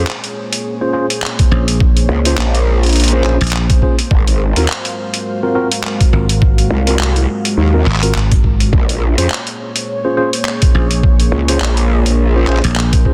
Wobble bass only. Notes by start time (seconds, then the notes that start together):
2.09 C#2
2.38 A#1
3.24 A#1
4.11 G#1
4.57 D#2
6.70 C2
7.00 C2
7.57 D#2
8.73 A#1
9.18 F2
11.32 C#2
11.61 A#1